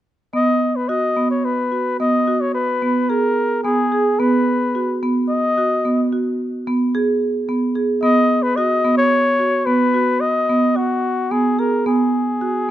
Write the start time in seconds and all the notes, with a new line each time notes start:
0.33 B3 D#5
0.76 B4
0.89 F#4 D#5
1.16 B3
1.31 C#5
1.45 B4
1.72 F#4
2.00 B3 D#5
2.27 F#4
2.41 C#5
2.55 B4
2.82 B3
3.09 G#4 A#4
3.64 B3 G#4
3.92 G#4
4.20 B3 B4
4.75 F#4
5.03 B3
5.29 D#5
5.58 F#4
5.85 B3
6.12 F#4
6.67 B3
6.95 G#4
7.49 B3
7.75 G#4
8.03 B3 D#5
8.43 B4
8.57 F#4 D#5
8.84 B3
8.98 C#5
9.39 F#4
9.66 B3 B4
9.94 F#4
10.21 D#5
10.49 B3
10.76 F#4
11.31 B3 G#4
11.59 G#4 A#4
11.86 B3 G#4
12.41 F#4